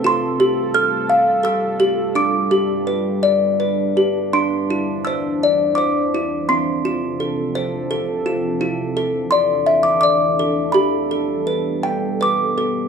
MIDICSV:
0, 0, Header, 1, 3, 480
1, 0, Start_track
1, 0, Tempo, 705882
1, 27, Time_signature, 3, 2, 24, 8
1, 1466, Tempo, 723764
1, 4346, Tempo, 704225
1, 6746, Tempo, 727273
1, 8637, End_track
2, 0, Start_track
2, 0, Title_t, "Music box"
2, 0, Program_c, 0, 10
2, 29, Note_on_c, 0, 65, 83
2, 44, Note_on_c, 0, 84, 100
2, 271, Note_on_c, 0, 67, 72
2, 505, Note_on_c, 0, 69, 64
2, 507, Note_on_c, 0, 89, 88
2, 529, Note_off_c, 0, 84, 0
2, 745, Note_on_c, 0, 77, 82
2, 966, Note_off_c, 0, 69, 0
2, 975, Note_on_c, 0, 69, 73
2, 983, Note_off_c, 0, 65, 0
2, 984, Note_on_c, 0, 88, 93
2, 996, Note_off_c, 0, 89, 0
2, 1214, Note_off_c, 0, 67, 0
2, 1222, Note_on_c, 0, 67, 66
2, 1463, Note_off_c, 0, 69, 0
2, 1464, Note_on_c, 0, 62, 76
2, 1466, Note_off_c, 0, 67, 0
2, 1467, Note_off_c, 0, 77, 0
2, 1469, Note_on_c, 0, 86, 80
2, 1481, Note_off_c, 0, 88, 0
2, 1701, Note_on_c, 0, 67, 68
2, 1940, Note_on_c, 0, 71, 63
2, 2161, Note_off_c, 0, 86, 0
2, 2178, Note_on_c, 0, 74, 77
2, 2414, Note_off_c, 0, 71, 0
2, 2422, Note_on_c, 0, 71, 62
2, 2429, Note_off_c, 0, 62, 0
2, 2661, Note_off_c, 0, 67, 0
2, 2669, Note_on_c, 0, 67, 66
2, 2910, Note_on_c, 0, 84, 83
2, 2911, Note_on_c, 0, 62, 71
2, 2912, Note_off_c, 0, 71, 0
2, 2912, Note_off_c, 0, 74, 0
2, 2914, Note_off_c, 0, 67, 0
2, 3156, Note_on_c, 0, 64, 66
2, 3365, Note_off_c, 0, 84, 0
2, 3383, Note_on_c, 0, 88, 82
2, 3399, Note_on_c, 0, 72, 64
2, 3640, Note_on_c, 0, 74, 85
2, 3851, Note_on_c, 0, 86, 82
2, 3861, Note_off_c, 0, 72, 0
2, 3869, Note_on_c, 0, 72, 66
2, 3872, Note_off_c, 0, 62, 0
2, 3882, Note_off_c, 0, 88, 0
2, 4104, Note_off_c, 0, 64, 0
2, 4112, Note_on_c, 0, 64, 60
2, 4339, Note_on_c, 0, 84, 84
2, 4341, Note_on_c, 0, 60, 72
2, 4345, Note_off_c, 0, 72, 0
2, 4347, Note_off_c, 0, 64, 0
2, 4351, Note_off_c, 0, 74, 0
2, 4351, Note_off_c, 0, 86, 0
2, 4586, Note_on_c, 0, 65, 67
2, 4825, Note_on_c, 0, 69, 59
2, 5036, Note_off_c, 0, 84, 0
2, 5065, Note_on_c, 0, 72, 86
2, 5298, Note_off_c, 0, 69, 0
2, 5302, Note_off_c, 0, 60, 0
2, 5306, Note_on_c, 0, 69, 71
2, 5537, Note_off_c, 0, 65, 0
2, 5546, Note_on_c, 0, 65, 69
2, 5781, Note_off_c, 0, 72, 0
2, 5783, Note_off_c, 0, 69, 0
2, 5784, Note_off_c, 0, 65, 0
2, 5784, Note_on_c, 0, 64, 82
2, 6028, Note_on_c, 0, 69, 76
2, 6260, Note_on_c, 0, 84, 89
2, 6270, Note_on_c, 0, 74, 68
2, 6504, Note_on_c, 0, 76, 79
2, 6617, Note_on_c, 0, 86, 92
2, 6635, Note_off_c, 0, 84, 0
2, 6729, Note_off_c, 0, 86, 0
2, 6738, Note_on_c, 0, 86, 99
2, 6747, Note_off_c, 0, 74, 0
2, 6748, Note_off_c, 0, 64, 0
2, 6754, Note_on_c, 0, 74, 77
2, 6985, Note_off_c, 0, 69, 0
2, 6993, Note_on_c, 0, 69, 64
2, 7210, Note_on_c, 0, 83, 84
2, 7222, Note_off_c, 0, 76, 0
2, 7224, Note_on_c, 0, 67, 81
2, 7226, Note_off_c, 0, 74, 0
2, 7227, Note_off_c, 0, 69, 0
2, 7232, Note_off_c, 0, 86, 0
2, 7466, Note_on_c, 0, 69, 65
2, 7702, Note_on_c, 0, 71, 63
2, 7943, Note_on_c, 0, 79, 88
2, 8181, Note_off_c, 0, 67, 0
2, 8182, Note_off_c, 0, 71, 0
2, 8190, Note_on_c, 0, 71, 62
2, 8202, Note_on_c, 0, 86, 82
2, 8392, Note_off_c, 0, 83, 0
2, 8426, Note_off_c, 0, 69, 0
2, 8434, Note_on_c, 0, 69, 54
2, 8637, Note_off_c, 0, 69, 0
2, 8637, Note_off_c, 0, 71, 0
2, 8637, Note_off_c, 0, 79, 0
2, 8637, Note_off_c, 0, 86, 0
2, 8637, End_track
3, 0, Start_track
3, 0, Title_t, "Ambient pad"
3, 0, Program_c, 1, 92
3, 37, Note_on_c, 1, 69, 78
3, 40, Note_on_c, 1, 65, 66
3, 41, Note_on_c, 1, 55, 69
3, 1457, Note_off_c, 1, 69, 0
3, 1458, Note_off_c, 1, 65, 0
3, 1471, Note_on_c, 1, 62, 61
3, 1474, Note_on_c, 1, 71, 75
3, 2896, Note_off_c, 1, 55, 0
3, 2905, Note_off_c, 1, 71, 0
3, 2916, Note_on_c, 1, 52, 67
3, 2920, Note_on_c, 1, 72, 77
3, 4323, Note_off_c, 1, 62, 0
3, 4333, Note_off_c, 1, 52, 0
3, 4335, Note_off_c, 1, 72, 0
3, 4342, Note_on_c, 1, 48, 74
3, 4342, Note_on_c, 1, 53, 68
3, 4345, Note_on_c, 1, 69, 80
3, 4346, Note_on_c, 1, 60, 60
3, 5766, Note_off_c, 1, 48, 0
3, 5766, Note_off_c, 1, 53, 0
3, 5767, Note_off_c, 1, 69, 0
3, 5768, Note_off_c, 1, 60, 0
3, 5774, Note_on_c, 1, 52, 76
3, 5776, Note_on_c, 1, 69, 76
3, 5777, Note_on_c, 1, 62, 65
3, 7204, Note_off_c, 1, 52, 0
3, 7205, Note_off_c, 1, 62, 0
3, 7223, Note_on_c, 1, 59, 66
3, 7224, Note_on_c, 1, 55, 72
3, 8635, Note_off_c, 1, 69, 0
3, 8637, Note_off_c, 1, 55, 0
3, 8637, Note_off_c, 1, 59, 0
3, 8637, End_track
0, 0, End_of_file